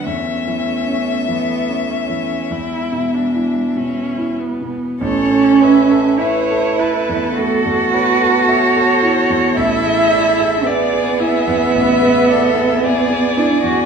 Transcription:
X:1
M:4/4
L:1/16
Q:1/4=52
K:A
V:1 name="Viola"
C4 B,2 C2 E2 D2 C2 B,2 | c2 e2 c2 B2 A2 B2 c4 | e4 d2 e6 d4 |]
V:2 name="Violin"
e12- e2 z2 | A2 B2 B2 A8- A2- | A4 G4 B2 A2 G4 |]
V:3 name="Grand piano"
(3E,,2 E,2 C2 (3E,2 C2 E,2 (3E,,2 B,,2 E2 (3B,,2 E2 B,,2 | A,,, A, c A e A E E,, A, E,, c A e A E E,, | A,,, G, d G e G E E,, A,,, G, d G e G E E,, |]
V:4 name="Cello"
A,8 G,8 | C4 E4 F8 | E4 B,8- B,2 D F |]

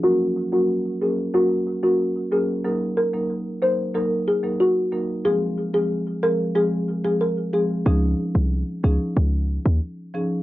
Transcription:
X:1
M:4/4
L:1/16
Q:1/4=92
K:Db
V:1 name="Marimba"
G2 z G z2 A z G z2 G z2 A z | z2 B z3 c2 B z A z G3 z | A2 z A z2 B z A z2 A B z A z | z16 |]
V:2 name="Marimba"
[G,B,DB] z2 [G,B,DB]3 [G,B,DB]2 [G,B,DB]3 [G,B,DB] z2 [G,B,DB] z | [G,B,EB] z2 [G,B,EB]3 [G,B,EB]2 [G,B,EB]3 [G,B,EB] z2 [G,B,EB] z | [F,A,CA] z2 [F,A,CA]3 [F,A,CA]2 [F,A,CA]3 [F,A,CA] z2 [F,A,CA] z | [F,DEA]6 [F,DEA]2 z6 [F,DEA] z |]
V:3 name="808-style bass" clef=bass
z16 | z16 | z16 | D,,2 z C,,2 z D,, z D,,3 E,, z4 |]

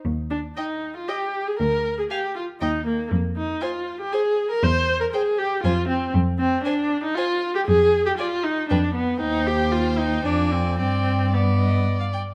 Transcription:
X:1
M:3/4
L:1/16
Q:1/4=117
K:Eb
V:1 name="Violin"
z4 g4 g4 | z4 a4 g4 | z4 a4 a4 | z4 g4 a4 |
[K:Gphr] z4 a4 a4 | z4 a4 g4 | g8 a4 | g4 d2 e3 f g2 |]
V:2 name="Violin"
z4 e4 e4 | z4 f4 e4 | z4 c4 c4 | z4 c4 c4 |
[K:Gphr] z4 c4 c4 | z4 d4 =B4 | c8 d4 | d4 d6 z2 |]
V:3 name="Viola"
z2 D2 E3 F G3 A | B3 A G2 F2 E2 B,2 | z2 E2 F3 G A3 B | c3 B A2 G2 F2 C2 |
[K:Gphr] z2 C2 D3 E F3 G | A3 G F2 E2 D2 =B,2 | E2 G2 F2 E2 D2 C2 | C4 =B,4 z4 |]
V:4 name="Cello" clef=bass
E,,4 z8 | D,,4 z4 E,,4 | F,,4 z8 | =E,,4 z4 F,,4 |
[K:Gphr] F,,4 z8 | F,,4 z4 F,,4 | E,,8 F,,4 | G,,8- G,,2 z2 |]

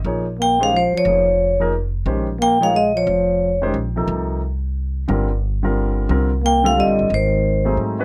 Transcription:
X:1
M:3/4
L:1/8
Q:"Swing" 1/4=179
K:Bbdor
V:1 name="Vibraphone"
z2 g f c d- | d3 z3 | z2 g f e d- | d3 z3 |
z6 | z6 | z2 g f e2 | c4 z2 |]
V:2 name="Grand piano"
[F,B,EAd] z2 [E,A,DGc] z2 | [F,B,EAd] z2 [F,B,EAB] z2 | [E,A,DGc] z2 [F,B,EAd] z2 | z3 [E,A,DGc] z [C,F,B,E=A]- |
[C,F,B,E=A]2 z4 | [=D,G,CFB] z2 [D,G,CFB]3 | [=D,G,CFB] z2 [D,G,CF=A]3 | z3 [_G,=A,CE_A]2 [E,_A,D_G_c] |]
V:3 name="Trombone" clef=bass
z2 B, A, F, F,- | F,3 z3 | z2 B, A, A, F,- | F,3 z3 |
z6 | z6 | z2 B, =A, G,2 | E,4 z2 |]
V:4 name="Upright bass" clef=bass
B,,,4- B,,, z | F,,,6 | B,,,6 | F,,,4 B,,,2 |
C,,6 | G,,,6 | C,,4- (3C,, B,,, G,,, | A,,,4 A,,2 |]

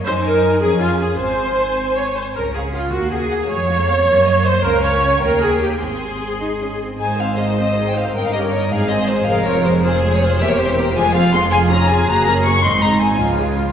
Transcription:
X:1
M:6/8
L:1/16
Q:3/8=106
K:Db
V:1 name="Violin section"
a6 a6 | a8- a2 z2 | z2 f2 f2 z2 g2 g2 | z2 f2 f2 z2 e2 e2 |
[K:Ab] f6 g6 | c'8- c'2 z2 | a2 f2 e2 e3 g f2 | g f e2 d e f2 e2 c2 |
f2 d2 c2 c3 d c2 | =e d c2 B c a2 f2 c'2 | [K:Db] a2 b2 a2 b2 b2 d'2 | c'2 b2 a2 z6 |]
V:2 name="Violin section"
c2 B4 A2 F2 A2 | c8 d2 c2 | B2 A2 F2 G2 A4 | d8- d2 c2 |
[K:Ab] B2 d4 B2 A2 G2 | A8- A2 z2 | c12 | B6 A6 |
B6 A6 | G6 F6 | [K:Db] A12 | E6 F6 |]
V:3 name="Viola section"
c2 B4 A2 F2 A2 | c8 d2 c2 | B2 A2 F2 G2 A4 | d8- d2 c2 |
[K:Ab] B2 d4 B2 A2 G2 | A8- A2 z2 | [EA]2 [Cc]2 [EA]2 [Cc]2 [EA]2 [Cc]2 | [EB]2 [DG]2 [EB]2 [EA]2 [Cc]2 [EA]2 |
[A,A]2 [CF]2 [A,A]2 [CF]2 [A,A]2 [CF]2 | [B,B]2 [Cc]2 [B,B]2 [A,A]2 [CF]2 [A,A]2 | [K:Db] [FA]2 [DF]2 [FA]2 [B,G]2 [DB]2 [B,G]2 | [CE]2 [A,C]2 [CE]2 [F,F]2 [A,A]2 [F,F]2 |]
V:4 name="Cello section"
E6 D6 | C8- C z3 | D6 B,6 | A,2 B,2 C2 B,6 |
[K:Ab] D6 B,6 | C6 E2 D2 C2 | A,,12 | G,,6 A,,6 |
F,,12 | =E,,6 F,,6- | [K:Db] F,,6 G,,6 | A,,6 D,6 |]
V:5 name="Double bass section" clef=bass
G,,6 F,,6 | A,,,8- A,,,2 z2 | D,,6 E,,6 | F,,6 G,,6 |
[K:Ab] D,,6 E,,6 | A,,,8- A,,,2 z2 | A,,,12 | G,,,6 A,,,6 |
F,,,12 | =E,,,6 F,,,6- | [K:Db] F,,,6 G,,,6 | A,,,6 D,,6 |]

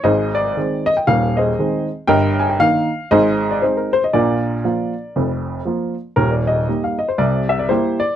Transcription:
X:1
M:4/4
L:1/16
Q:"Swing" 1/4=118
K:Eb
V:1 name="Upright piano"
[Ace]2 d4 e g f2 [Ace]4 z2 | [Beg]2 a g f4 [Ace]3 d c B c e | [FBd]12- [FBd]2 z2 | B d e3 f e c d2 =e d [=EGc]2 d2 |]
V:2 name="Upright piano" clef=bass
[A,,,A,,]4 [E,A,C]4 [E,,,E,,]4 [E,A,C]4 | [G,,,G,,]4 [E,B,E]4 [A,,,A,,]4 [A,CE]4 | [B,,,B,,]4 [F,B,F]4 [F,,,F,,]4 [F,B,F]4 | [E,,,E,,]4 [G,B,E]4 [C,,C,]4 [G,B,]4 |]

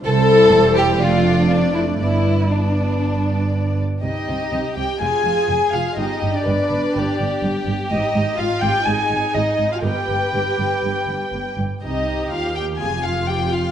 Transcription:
X:1
M:4/4
L:1/16
Q:1/4=123
K:Gmix
V:1 name="Violin section"
c8 d8 | d4 d8- d2 z2 | [K:Cm] e6 g2 a6 f2 | e3 d8- d3 z2 |
e4 f2 g2 a4 e3 f | g12- g2 z2 | e4 f2 g2 a2 f2 g2 f2 |]
V:2 name="Violin section"
A6 G2 F4 D2 E2 | E4 D8- D2 z2 | [K:Cm] G8 F4 A4 | G4 =B4 G8- |
G4 F4 E8 | =B12- B2 z2 | G8 F8 |]
V:3 name="Viola section"
[G,E]8 [A,D]8 | [B,D]4 [B,D]8- [B,D]2 z2 | [K:Cm] E6 G2 A6 F2 | E3 D8- D3 z2 |
E4 F2 G2 A4 E3 F | G12- G2 z2 | E4 F2 G2 A2 F2 G2 F2 |]
V:4 name="Cello section" clef=bass
C,4 E,,4 F,,8 | G,,12- G,,2 z2 | [K:Cm] C,2 C,2 C,2 C,2 F,,2 F,,2 F,,2 F,,2 | G,,2 G,,2 G,,2 G,,2 G,,2 G,,2 G,,2 G,,2 |
A,,2 A,,2 A,,2 A,,2 A,,2 A,,2 A,,2 A,,2 | G,,2 G,,2 G,,2 G,,2 G,,2 G,,2 G,,2 G,,2 | C,4 E,,4 F,,8 |]
V:5 name="Double bass section" clef=bass
C,,4 E,,,4 F,,,8 | G,,,12- G,,,2 z2 | [K:Cm] C,,2 C,,2 C,,2 C,,2 F,,,2 F,,,2 F,,,2 F,,,2 | G,,,2 G,,,2 G,,,2 G,,,2 G,,,2 G,,,2 G,,,2 G,,,2 |
A,,,2 A,,,2 A,,,2 A,,,2 A,,,2 A,,,2 A,,,2 A,,,2 | G,,,2 G,,,2 G,,,2 G,,,2 G,,,2 G,,,2 G,,,2 G,,,2 | C,,4 E,,4 F,,,8 |]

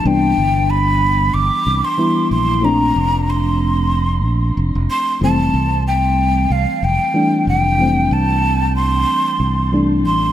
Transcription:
X:1
M:4/4
L:1/16
Q:"Swing 16ths" 1/4=93
K:F
V:1 name="Flute"
g4 =b4 d'3 c'3 c'2 | b4 c'8 z2 c'2 | a4 g4 f2 g4 g2- | g2 a4 c'6 z2 c'2 |]
V:2 name="FM electric piano"
[E,G,=B,D]12 [E,G,B,E]4 | [F,A,CD]12 z4 | [E,G,A,C]12 [E,G,A,D]4 | [E,G,A,C]12 [E,G,A,D]4 |]
V:3 name="Fingered electric bass" clef=bass
C,,2 G,,,6 G,,, z C,, z3 B,,,2- | B,,,2 F,,,8 B,,,2 F,,, F,,, z2 | F,,,2 C,,6 C,, z F,,, z3 F,,,2- | F,,,2 C,,6 z2 C,,4 A,,,2 |]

